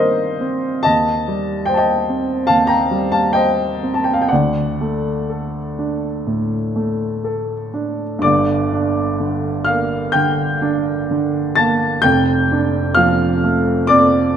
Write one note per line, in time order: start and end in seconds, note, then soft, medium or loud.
0.00 0.21 D#3 soft
0.00 0.88 G3 soft
0.00 0.41 C4 soft
0.00 0.88 A#4 soft
0.00 0.89 C5 medium
0.00 0.88 D5 soft
0.00 0.84 D#5 medium
0.00 0.88 F5 medium
0.41 0.86 C4 soft
0.83 2.45 D#2 soft
0.83 1.63 D#5 medium
0.83 1.66 A5 medium
1.28 1.92 G3 soft
1.66 2.33 C5 soft
1.66 1.72 G5 medium
1.74 2.48 G5 medium
1.74 1.80 A5 medium
1.78 2.45 D#5 soft
2.09 2.75 C4 soft
2.47 4.26 D#2 soft
2.47 2.68 F5 medium
2.47 2.69 A5 medium
2.67 3.10 G5 medium
2.67 3.12 A#5 medium
2.91 3.62 G3 soft
3.12 3.34 F5 medium
3.12 3.35 A5 medium
3.33 4.11 C5 soft
3.33 3.88 D#5 medium
3.33 3.91 G5 medium
3.83 4.31 C4 soft
3.94 4.03 A5 medium
4.04 4.12 G5 medium
4.13 4.22 F5 medium
4.22 4.30 G5 medium
4.28 6.21 D2 soft
4.28 7.68 D5 soft
4.28 7.71 F#5 medium
4.81 5.57 A3 soft
5.29 6.06 A4 soft
5.79 6.55 D4 soft
6.26 7.03 A2 soft
6.76 7.53 A3 soft
7.24 8.03 A4 soft
7.74 8.23 D4 soft
8.19 10.10 G2 medium
8.19 9.64 D5 medium
8.19 9.68 D6 medium
8.24 10.12 G1 medium
8.73 9.49 D4 soft
9.20 9.97 D3 soft
9.65 10.43 A#3 soft
9.65 10.11 F5 medium
9.65 10.14 F6 medium
10.12 10.90 D3 soft
10.12 11.52 G5 medium
10.12 11.55 G6 medium
10.62 11.38 D4 medium
11.11 11.86 D3 soft
11.55 12.05 A#3 soft
11.55 12.01 A5 medium
11.55 12.03 A6 medium
12.02 13.86 F1 medium
12.02 13.86 F2 medium
12.02 12.93 G5 medium
12.02 12.96 G6 medium
12.52 13.25 D4 soft
12.95 13.72 F3 medium
12.95 13.85 F5 medium
12.95 13.89 F6 medium
13.44 14.18 A3 soft
13.87 14.37 F2 medium
13.87 14.37 D5 medium
13.87 14.37 D6 medium